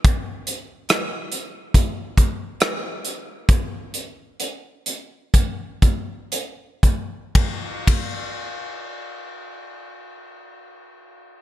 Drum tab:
RD |--------|--------|xx------|
HH |xxxxxxxx|xxxxxxxx|--------|
SD |--r---r-|--------|--------|
BD |o---oo--|o---oo-o|oo------|